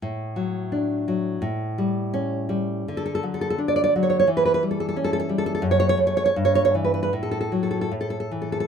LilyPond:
\new Staff \with { instrumentName = "Nylon-string guitar" } { \time 2/4 \key d \major \tempo 4 = 86 << { r2 | r2 | r32 a'32 a'32 a'32 r32 a'32 a'32 a'32 r32 d''32 d''32 d''32 r32 cis''32 cis''32 cis''32 | r32 b'32 b'32 b'32 r32 a'32 a'32 a'32 r32 a'32 a'32 a'32 r32 a'32 a'32 a'32 |
r32 cis''32 cis''32 cis''32 r32 cis''32 cis''32 cis''32 r32 cis''32 cis''32 cis''32 r32 b'32 b'32 b'32 | r32 a'32 a'32 a'32 r32 a'32 a'32 a'32 r32 a'32 a'32 a'32 r32 a'32 a'32 a'32 | } \\ { a,8 fis8 d'8 fis8 | a,8 g8 cis'8 g8 | d8 fis8 d'8 fis8 | e8 g8 cis'8 g8 |
fis,8 a8 g,8 e8 | a,8 fis8 a,8 e8 | } >> }